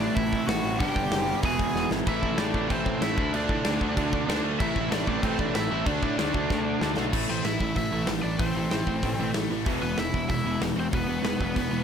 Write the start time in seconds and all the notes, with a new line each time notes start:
Already playing: A2 E3 A3 C4 D4 E4 D5
0.15 A1 E4 E5, kick, open hi-hat
0.33 A2 E3 A3 C4 E4, kick
0.47 A1 A2 E3 A3 C4 E4 F#4 F#5, snare, open hi-hat
0.64 A1
0.79 G1 G2 D3 G3 B3 D4 G4 G5, kick, open hi-hat
0.96 G1, kick
1.10 F#1, snare, open hi-hat
1.42 E1 E2 B2 E3 G#3 B3 E4 G#4 G#5, kick, open hi-hat
1.59 kick
1.74 E1, snare
1.91 G#1, snare
2.06 A1 A2 E3 A3 C4 E4 A4 E5, kick, crash
2.23 A1, kick
2.37 A1 A2 E3 A3 C4 D4 E4 A4 D5, snare, crash
2.54 A1 A2 E3 A3 C4 E4 A4, kick
2.69 A1 A2 E3 A3 C4 E4 A4 C5, kick, crash
2.86 A1, kick
3.01 A1 A2 E3 A3 C4 E4 A4 E5, snare, crash
3.17 D2 D3 A3 D4 F4 A4, kick
3.33 D2 D3 A3 D4 F4 A4 D5, crash
3.49 A2 D4 D5, kick
3.64 D2 D3 A3 D4 F4 A4, snare, crash
3.81 D2 D3 A3 D4 F4 A4, kick
3.97 D2 D3 A3 D4 F4 A4, kick, crash
4.13 kick
4.28 D2 D3 A3 D4 F4 A4, snare, crash
4.43 D2 D3 A3 D4 F4 A4
4.59 A1 A2 E3 A3 C4 E4 A4 E5, kick, crash
4.76 A1, kick
4.91 A1 A2 E3 A3 C4 D4 E4 A4 D5, snare, crash
5.07 A1 A2 E3 A3 C4 D4 E4 A4 D5, kick
5.22 A1 A2 E3 A3 C4 E4 A4 C5, kick, crash
5.39 A1 D4 D5, kick
5.54 A1 A2 E3 A3 C4 E4 A4 E5, snare, crash
5.71 A1 A2 E3 A3 C4 E4 A4
5.86 D2 D3 A3 D4 F#4 A4 D5, kick, crash
6.03 A2 D4 D5, kick
6.17 D2 D3 A3 D4 F#4 A4, snare, crash
6.34 D2 D3 A3 D4 F#4 A4, kick
6.50 D2 D3 A3 D4 F#4 A4, kick, snare
6.81 D2 D3 A3 D4 F#4 A4, snare
6.97 B1 D3 A3 D4 F#4 A4, snare
7.13 A1 A2 E3 A3, kick, crash
7.29 A1 A2 E3 A3 C4 C5
7.44 A1 A2 E3 A3 E4 E5, snare, open hi-hat
7.60 A1 A2 E3 A3, kick
7.75 A1 A2 E3 A3 E4 E5, kick, open hi-hat
7.91 A1 A2 E3 A3
8.07 A1 A2 E3 A3, snare, open hi-hat
8.22 A1 A2 E3 A3 D4 D5
8.38 A1 A2 E3 A3 C4 C5, kick, open hi-hat
8.54 A1 A2 E3 A3
8.71 A1 A2 E3 A3, snare, open hi-hat
8.86 A1 A2 E3 A3, kick
9.03 A1 A2 E3 A3, kick, open hi-hat
9.19 A1 A2 E3 A3
9.34 A1 A2 E3 A3, snare, open hi-hat
9.50 A1 A2 E3 A3
9.65 E1 E2 B2 E3 G#3 B3, kick, open hi-hat
9.82 E1 E2 B2 E3 G#3 B3 B4
9.98 E1 E2 B2 E3 G#3 E4 E5, snare, open hi-hat
10.13 E1 E2 B2 E3 G#3, kick
10.28 E1 E2 B2 E3 G#3 E4 E5, kick, open hi-hat
10.45 E1 E2 B2 E3 G#3
10.61 E1 E2 B2 E3 G#3, snare, open hi-hat
10.76 E1 E2 B2 E3 G#3 C4 C5
10.92 E1 E2 B2 E3 G#3 B3 B4, kick, open hi-hat
11.07 E1 E2 B2 E3 G#3
11.11 E2
11.23 E1 E2 B2 E3 G#3, snare, open hi-hat
11.39 E1 E2 B2 E3 G#3, kick
11.55 E1 E2 B2 E3 G#3, kick, open hi-hat
11.71 E1 E2 B2 E3 G#3